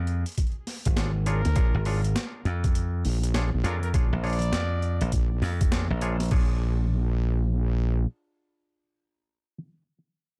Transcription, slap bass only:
Already playing: F2
0.86 G#1
1.75 G#1
2.45 F2
3.64 F2
4.13 A#1
4.53 F2
5.01 A#1
5.42 F2
5.90 A#1

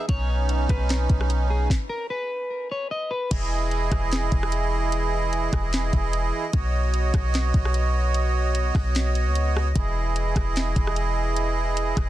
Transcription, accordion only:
0.09 B3 C#4 D#4
3.31 E3 E4 G#4 D#5
6.53 B3 F#4 C#5
9.76 E3 E4 G#4

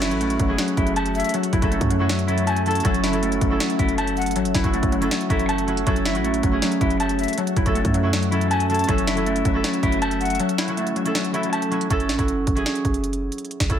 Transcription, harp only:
Already playing: B4 C#5 E5 F#5
0.10 F#3 C#4 E4 F#4
0.48 F#3 C#4 E4 G#4
1.61 F#3 C#4 E4 A4
1.99 F#3 C#4 E4 F#4
2.27 F#3 C#4 E4 A4
2.66 F#3 C#4 E4 A4
2.83 F#3 C#4 E4 A4
3.12 F#3 C#4 E4 A4
3.50 F#3 C#4 E4 A4
4.64 F#3 C#4 E4 F#4
5.01 F#3 C#4 E4 A4
5.29 F#3 C#4 E4 A4
5.67 F#3 C#4 E4 F#4
5.86 F#3 C#4 E4 A4
6.14 F#3 C#4 E4 F#4
6.51 F#3 C#4 E4 G#4
7.65 F#3 C#4 E4 A4
8.03 F#3 C#4 E4 F#4
8.31 F#3 C#4 E4 A4
8.69 F#3 C#4 E4 A4
8.87 F#3 C#4 E4 A4
9.16 F#3 C#4 E4 A4
9.54 F#3 C#4 E4 A4
10.67 F#3 C#4 E4 F#4
11.05 F#3 C#4 E4 A4
11.33 F#3 C#4 E4 A4
11.71 F#3 C#4 E4 F#4
11.90 F#3 C#4 E4 A4
12.17 F#3 C#4 E4 F#4
12.55 F#3 C#4 E4 G#4
13.69 F#3 C#4 E4 A4

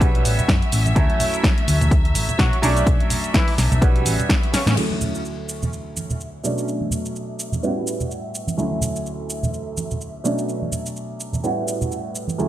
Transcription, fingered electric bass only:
Already playing: B1
0.25 A1
0.39 muted fingered electric bass stroke
0.49 F#2
0.73 A1
0.96 D2
1.68 D2
1.81 D2
2.15 A1
2.29 muted fingered electric bass stroke
2.39 B2
2.63 B1
2.87 B1
3.58 B1
3.72 B1
4.06 A1
4.54 muted fingered electric bass stroke
4.66 A2

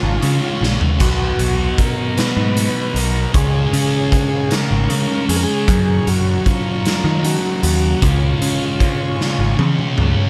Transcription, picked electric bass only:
0.03 G#1
0.23 C#3
0.61 A#1
1.01 B1
1.39 B1
2.37 G#2
2.95 B1
3.34 C#2
3.73 C#3
4.71 G#1
4.90 C#3
5.29 F2
5.68 F#2
6.07 F#2
7.04 D#3
7.63 D#2
8.03 C#2
8.42 C#3
9.39 G#1
9.59 C#3
9.98 C#2

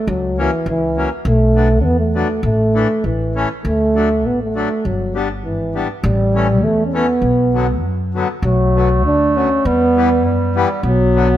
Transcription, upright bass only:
0.07 C#2
0.66 C#2
1.25 B1
1.84 E2
2.43 A1
3.04 A1
3.65 D2
4.25 A1
4.85 G1
5.44 G#1
6.04 A1
6.62 E2
7.22 B1
7.81 F#2
8.42 B1
9.04 D2
9.65 E2
10.24 F#2
10.83 B1

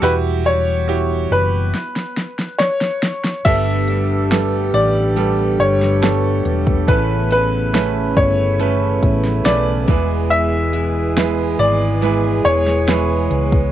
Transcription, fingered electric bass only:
0.02 E1
1.31 F#1
3.45 G1
4.74 A1
5.59 G1
6.45 E1
6.88 A1
8.16 G1
9.03 A1
9.45 B1
9.88 E1
11.59 G#1
12.45 E1
13.31 C#2

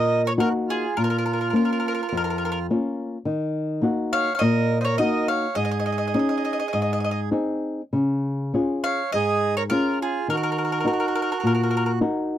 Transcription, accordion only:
Already playing: A#4
0.24 A#4
0.39 F#4
0.68 F4
0.96 F4
4.13 C#5
4.36 C#5
4.41 A#4
4.81 A#4 C5
5.00 A#4
5.29 C#5
5.56 G#4
8.84 C#5
9.15 G#4
9.57 A#4
9.70 F4
10.01 F4
10.32 F#4

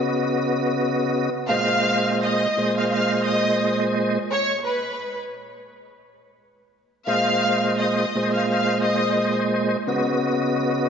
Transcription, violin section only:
1.48 F5 F6
2.22 D#5 D#6
2.77 F5 F6
2.88 F5 F6
3.24 D#5 D#6
4.31 C#5 C#6
4.65 B4 B5
7.08 F5 F6
7.79 D#5 D#6
8.33 F5 F6
8.50 F5 F6
8.82 D#5 D#6

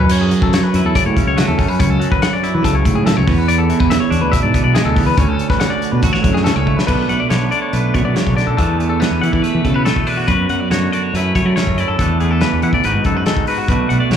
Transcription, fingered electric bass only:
Already playing: F#2
0.42 F#2
0.74 F#2
0.85 E2
1.06 A2
1.27 C#2
1.48 E2
1.59 F#2
1.80 C#2
2.55 E3
2.65 C#2
2.86 A2
3.18 C#2
3.28 E2
3.81 E2
4.11 E2
4.22 D2
4.44 G#2
4.65 B1
4.85 D2
4.97 C#2
5.18 D2
5.93 B2
6.03 A1
6.24 F#2
6.56 C#2
6.89 B1
7.08 B1
7.31 B1
7.73 B1
7.95 B2
8.05 B2
8.27 B1
8.47 B1
8.59 E2
9.11 E2
9.23 E3
9.33 E3
9.55 E3
9.65 C#3
10.28 F#2
10.49 F#2
10.70 F#2
11.14 F#2
11.35 F#3
11.45 F#3
11.68 F#2
11.89 F#2
12.00 E2
12.53 E2
12.63 E3
12.73 A1
12.84 G#1
12.95 G#2
13.05 F#2
13.68 B1
13.90 B1
14.10 B1

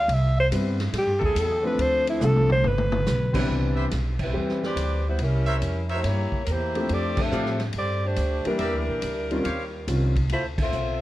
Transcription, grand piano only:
0.52 G3 B3 C4 E4 B4
1.63 F3 A3 C4 D4 A4
2.20 F3 A3 C4 D4 A4
3.34 E3 G3 B3 C4 D4
4.33 E3 G3 C4 G4 B4
6.75 F3 A3 C4 D4 G4
7.32 F3 A3 C4 D4 G4
8.46 E3 G3 A#3 D4 G4
9.31 D#3 G3 C4 C#4 F4
9.87 D#3 G3 C4 C#4 F4

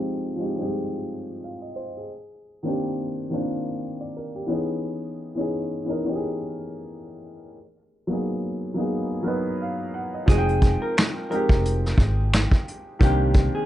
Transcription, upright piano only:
Already playing: F3 G#3 C4 D#4 G4
0.36 F3 G#3 C4
0.40 D#4 G4
0.56 F3 G3 C4
0.60 G#3 D#4 G4
1.44 F5
1.62 D#5
1.76 C5
1.97 G#4
2.63 D#3 A#3 C4 D4
2.68 G4
3.30 D#3 A#3 C4 D4
3.36 F4
4.01 D5
4.17 A#4
4.36 G4
4.46 E3 B3 C#4
4.50 D#4 G#4
5.35 E3 B3 C#4
5.39 D#4 G#4
5.85 E3 B3 C#4
5.89 D#4 A#4
6.04 E3 B3 C#4
6.08 D#4 G4
6.16 G#4
8.07 F#3 A#3 B3 D#4
8.13 G#4
8.74 F#3 A#3 B3
8.78 D#4 G#4
9.23 F#3 B3 A#4
9.27 D#4 B4
9.62 F5
9.94 F#5
10.14 D#5
10.26 F3 G#3 C4
10.30 D#4 F#4
10.38 G5
11.29 F3 G#3 C4 D#4
11.35 G4
12.99 D#3 A#3 C4
13.03 D4 G4

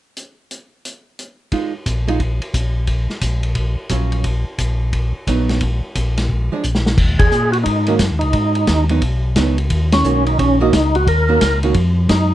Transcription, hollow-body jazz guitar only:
1.52 G#3 D#4 F4
2.08 G#3 D#4 F4
3.90 F#3 C#4 F4
5.28 F#3 B3 D#4
6.52 F3 G#3 D4
7.88 D#3 A#3 C#4 F#4
8.90 F#3 B3 D#4
9.36 F#3 B3 D#4
10.05 D#3 A#3 C#4 F#4
10.60 D#3 A#3 C#4 F#4
11.29 D#3 A#3 C#4 F#4
11.63 D#3 A#3 C#4 F#4

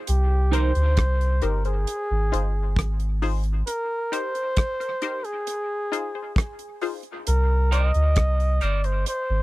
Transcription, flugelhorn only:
0.09 G4
0.54 C5
1.44 A#4
1.66 G#4
3.67 A#4
4.13 C5
5.25 G#4
7.28 A#4
7.73 D#5
8.63 D5
8.85 C5
9.08 C5

